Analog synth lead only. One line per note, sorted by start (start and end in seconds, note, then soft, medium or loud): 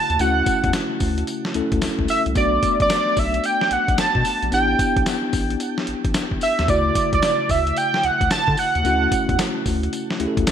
0.00 0.22 A5 loud
0.21 0.74 F#5 loud
2.10 2.22 E5 medium
2.37 2.78 D5 medium
2.82 3.20 D5 medium
3.19 3.47 E5 loud
3.45 3.74 G5 loud
3.73 3.99 F#5 loud
4.00 4.49 A5 loud
4.54 5.03 G5 loud
6.43 6.67 E5 medium
6.70 7.10 D5 medium
7.14 7.52 D5 medium
7.51 7.79 E5 loud
7.78 8.06 G5 loud
8.05 8.31 F#5 loud
8.32 8.60 A5 loud
8.59 9.39 F#5 loud